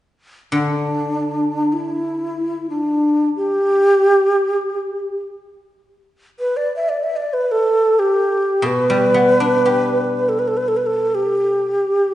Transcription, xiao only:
0.53 D4
1.73 E4
2.70 D4
3.36 G4
6.40 B4
6.57 D5
6.76 E5
6.89 D5
7.04 E5
7.16 D5
7.33 B4
7.51 A4
7.99 G4
8.66 B4
10.29 A4
10.39 B4
10.48 A4
10.57 B4
10.68 A4
10.77 B4
10.86 A4
11.15 G4

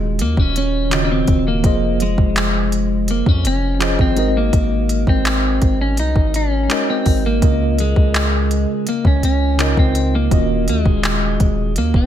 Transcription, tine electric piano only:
Already playing: D#3 C#4 F4 F#4 D#5
0.90 C#3 D#3 F4 F#4
0.94 D#5
1.62 F3 F4 G#4 C5
1.66 D#5
3.79 F3 F4 G#4 C5
3.83 D#5
4.15 G#3 D#4 F#4 A#4
4.19 D#5
6.68 G#3 D#4 F#4 A#4 D#5
7.40 C#3 C#4 F4 A#4
7.45 D#5
9.57 C#3 D#4 F4 A#4
9.61 D#5
10.30 D#3 C#4 F4 F#4
10.34 D#5

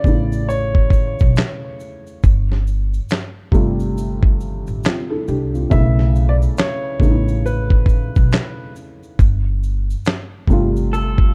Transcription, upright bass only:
0.04 A1
1.21 B1
2.24 G1
3.52 G1
4.68 A1
5.28 C2
5.72 B1
7.00 A1
8.17 B1
9.19 G1
10.48 G1

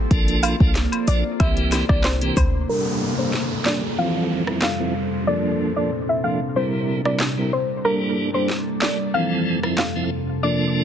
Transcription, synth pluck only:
0.43 F5
1.08 D5
1.40 E5
1.89 D5
2.04 C5
2.37 C5
2.69 A#4
3.19 C5
3.66 D5
3.98 F5
4.63 F5
5.27 D5
5.76 D5
6.09 E5
6.24 F5
6.56 C5
7.05 D5
7.53 C5
7.85 A#4
8.34 C5
8.82 D5
9.14 F5
9.79 F5
10.43 D5

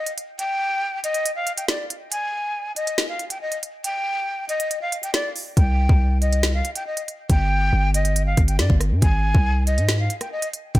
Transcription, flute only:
Already playing: D#5
0.39 G5
1.04 D#5
1.36 F5
1.57 G5
1.69 D5
2.11 G#5
2.76 D#5
3.09 F5
3.30 G5
3.41 D#5
3.85 G5
4.49 D#5
4.82 F5
5.03 G5
5.14 D5
5.57 G5
6.21 D#5
6.54 F5
6.76 G5
6.87 D#5
7.30 G5
7.95 D#5
8.26 F5
8.48 G5
8.59 D5
9.02 G#5
9.67 D#5
9.99 F5
10.21 G5
10.32 D#5
10.75 G5

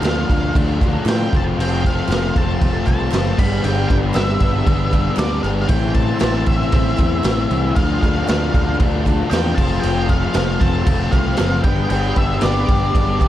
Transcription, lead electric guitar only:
0.08 F5
1.09 G5
1.36 A5
1.62 G5
1.87 F5
2.11 F5
2.37 A5
2.87 A5
3.39 B5
3.65 G5
3.89 G5
4.15 E5
5.19 D5
5.43 F5
5.62 F5
5.69 G5
5.95 A5
6.47 E5
7.76 F5
8.01 F5
8.29 F5
9.30 G5
9.55 A5
9.80 G5
10.10 F5
10.37 F5
10.60 A5
11.12 F5
11.64 G5
11.90 G5
12.17 E5
12.43 D5

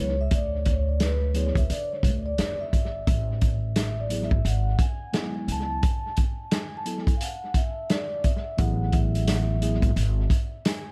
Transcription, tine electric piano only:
Already playing: F#3 B3 E4 B4
1.34 F#3 B3 E4 G#4
4.10 F#3 B3 E4 G#4
5.13 F#3 G#3 B3 E4
6.85 F#3 B3 E4 A4
8.58 F#3 B3 E4 G#4
9.61 F#3 B3 E4 G#4

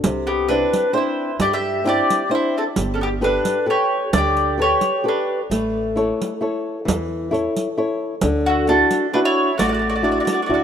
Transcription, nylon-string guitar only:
0.04 C3
0.49 C4 D4 E4
0.93 C4 D4 E4
1.40 G3
1.84 C4 D4 E4
2.29 C4 D4 E4
2.76 G3
3.21 G4 A4 B4
3.66 G4 A4 B4
4.13 D3
4.58 G4 A4 B4
5.04 G4 A4 B4
5.51 A3
5.96 E4 A4 C#5
6.41 E4 A4 C#5
6.85 E3
7.31 E4 A4 C#5
7.78 E4 A4 C#5
8.23 D3
8.68 D4 E4 F#4
9.14 D4 E4 F#4
9.59 A3
10.02 D4 E4 F#4
10.49 D4 E4 F#4

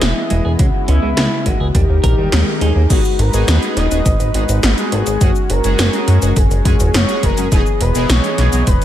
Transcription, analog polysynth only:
2.90 B3 D#4 F#4 G#4
3.33 B3 D#4 F#4 G#4
3.91 B3 D#4 F#4 G#4
4.35 B3 D#4 F#4 G#4
4.78 B3 D#4 F#4 G#4
5.21 G#3 C#4 F#4 G#4
5.65 G#3 C#4 F#4 G#4
6.22 G#3 C#4 F#4 G#4
6.66 G#3 C#4 F#4 G#4
7.09 G#3 C#4 F#4 G#4
7.52 B3 D#4 E4 G#4
7.95 B3 D#4 E4 G#4
8.53 B3 D#4 E4 G#4

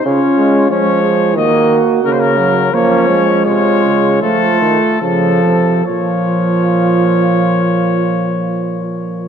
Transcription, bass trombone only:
0.06 C#3
0.38 G#3
0.70 F3
1.36 D#3
2.04 C#3
2.74 F3
3.46 C3
3.83 C#3
4.22 F3
4.61 D#3
5.02 C#3
5.44 C3
5.87 A#2

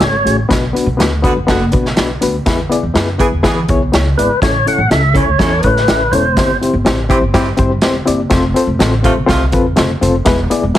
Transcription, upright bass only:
0.01 G#1
0.25 A1
0.50 B1
0.86 B1
0.99 D2
1.36 F#2
1.48 F#1
1.74 B2
1.98 B1
2.23 D2
2.46 E2
2.83 E2
2.95 F#2
3.32 E2
3.44 E3
3.69 B1
3.94 C#2
4.18 G#1
4.42 A1
4.78 A1
4.90 C#2
5.26 D2
5.39 E2
5.63 A2
5.87 A1
6.11 E1
6.36 G1
6.73 G1
6.85 A1
7.21 G1
7.34 G2
7.59 G2
7.82 E1
8.07 F#1
8.31 F1
8.67 F1
8.79 A1
9.17 B1
9.29 C2
9.53 F2
9.78 F1
10.02 F1
10.26 E1
10.63 E1

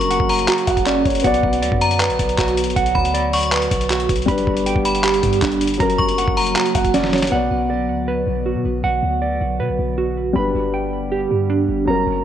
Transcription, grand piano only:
Already playing: F#3 C#4 A#4
0.67 F#5
0.86 D5
1.05 C#5
1.22 B3 F#4
1.27 D5
4.26 G3 D4
4.31 B4
5.78 F#3 C#4
5.82 A#4
6.75 F#5
6.94 D5
7.13 C#5
7.30 B3 F#4
7.34 D5
10.33 G3 D4
10.38 B4
11.85 F#3 C#4
11.90 A#4

